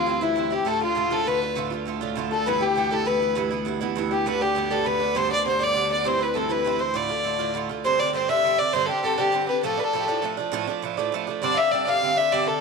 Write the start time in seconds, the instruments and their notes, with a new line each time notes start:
Already playing: cello D2, accordion F4, fiddle F4
0.06 bouzouki G2 E3 C4 E4
0.21 bouzouki G2 E3 C4 E4, fiddle E4, accordion E4
0.36 bouzouki G2 E3 C4 E4
0.50 bouzouki E3 C4 E4, fiddle G4, accordion G4
0.65 cello D2, bouzouki A2 D3 A3 F4, accordion A4, fiddle A4
0.81 bouzouki D3 A3 F4, accordion F4, fiddle F4
0.95 bouzouki A2 D3 A3 F4
1.11 bouzouki A2 D3 A3 F4, accordion A4, fiddle A4
1.24 bouzouki A2 D3, accordion A4 B4, fiddle B4
1.28 bouzouki A3 F4
1.41 bouzouki D3 A3 F4, accordion B4
1.56 bouzouki A2 D3 A3 F4
1.70 bouzouki D3 A3 F4
1.85 bouzouki A2 D3 A3 F4
2.01 bouzouki A2 D3 A3 F4
2.16 bouzouki A2 D3 A3 F4
2.31 bouzouki D3 A3 F4, accordion A4, fiddle A4
2.46 bouzouki G2 E3 B3 E4, accordion B4, fiddle B4
2.61 bouzouki E3 B3 E4, accordion G4, fiddle G4
2.75 bouzouki G2 E3 B3 E4
2.91 bouzouki G2 E3 B3 E4, accordion A4, fiddle A4
3.06 bouzouki G2 E3 B3 E4, accordion B4, fiddle B4
3.20 bouzouki E3 B3 E4
3.35 bouzouki G2 E3 B3 E4
3.50 bouzouki E3 B3 E4
3.65 bouzouki G2 E3 B3 E4
3.81 bouzouki G2 E3 B3 E4
3.96 bouzouki G2 E3 B3 E4
4.11 bouzouki E3 B3 E4, accordion G4, fiddle G4
4.26 bouzouki G2 D3 B3 D4, accordion B4, fiddle B4
4.41 bouzouki D3 B3 D4, fiddle G4, accordion G4
4.55 bouzouki G2 D3 B3 D4
4.71 bouzouki G2 D3 B3 D4, accordion A4, fiddle A4
4.85 bouzouki G2 D3 B3 D4, accordion B4, fiddle B4
5.00 bouzouki D3 B3 D4
5.15 bouzouki G2 D3 B3 D4, accordion C5, fiddle C5
5.30 bouzouki D3 B3 D4, fiddle D5
5.45 bouzouki G2 D3 B3 D4, fiddle C5
5.59 bouzouki G2 D3 B3 D4, accordion D5, fiddle D5
5.74 bouzouki G2 D3 B3 D4
5.89 bouzouki D3 B3 D4, accordion D5, fiddle D5
6.04 bouzouki G2 E3 C4 E4, accordion C5, fiddle C5
6.19 bouzouki E3 C4 E4, accordion B4, fiddle B4
6.33 bouzouki G2 E3 C4 E4, accordion A4, fiddle B4
6.37 fiddle A4
6.49 bouzouki G2 E3 C4 E4, accordion B4, fiddle B4
6.64 bouzouki G2 E3 C4 E4
6.79 bouzouki E3 C4 E4, fiddle C5, accordion C5
6.94 bouzouki A2 D3 A3 F4, accordion D5, fiddle D5
7.09 bouzouki D3 A3 F4
7.24 bouzouki A2 D3 A3 F4
7.39 bouzouki A2 D3 A3 F4
7.54 bouzouki A2 D3 A3 F4
7.69 bouzouki D3 A3 F4
7.84 bouzouki G2 D3 C4 D4, fiddle C5, accordion C5
7.99 bouzouki D3 C4 D4, fiddle D5
8.13 bouzouki G2 D3 C4 D4, accordion C5, fiddle C5
8.29 bouzouki G2 D3 C4 D4, fiddle E5, accordion E5
8.44 bouzouki G2 D3 C4 D4
8.58 bouzouki D3 C4 D4, fiddle D5, accordion D5
8.73 bouzouki G2 D3 C4 D4, fiddle C5, accordion C5
8.86 bouzouki C4 D4, fiddle G4 A4
8.91 bouzouki D3
9.03 bouzouki G2 D3 C4 D4, fiddle A4, accordion A4
9.18 bouzouki G2 D3 C4 D4, fiddle G4, accordion G4
9.32 bouzouki G2 D3 C4 D4
9.47 bouzouki D3 C4 D4, fiddle B4, accordion B4
9.63 bouzouki A2 F3 A3 D4, fiddle A4, accordion A4
9.77 bouzouki F3 A3 D4, fiddle B4
9.84 fiddle A4, accordion A4
9.93 bouzouki A2 F3 A3 D4
10.00 fiddle G4 A4
10.04 bouzouki D4, accordion A4
10.09 bouzouki A2 F3 A3
10.22 bouzouki A2 F3 A3 D4
10.37 bouzouki F3 A3 D4
10.52 bouzouki A2 F3 A3 D4
10.67 bouzouki F3 A3 D4
10.82 bouzouki A2 F3 A3 D4
10.97 bouzouki A2 F3 A3 D4
11.12 bouzouki A2 F3 A3 D4
11.27 bouzouki F3 A3 D4
11.42 bouzouki G2 D3 C4 D4, fiddle D5, accordion D5
11.54 bouzouki D4, fiddle E5 F5
11.58 bouzouki D3 C4, accordion E5
11.71 bouzouki G2 D3 C4 D4, fiddle D5
11.87 bouzouki G2 D3 C4 D4, fiddle F5, accordion F5
12.02 bouzouki G2 D3 C4 D4
12.16 bouzouki D3 C4 D4, accordion E5, fiddle E5
12.32 bouzouki G2 D3 C4 D4, accordion D5, fiddle D5
12.47 bouzouki D3 C4 D4, accordion A4, fiddle A4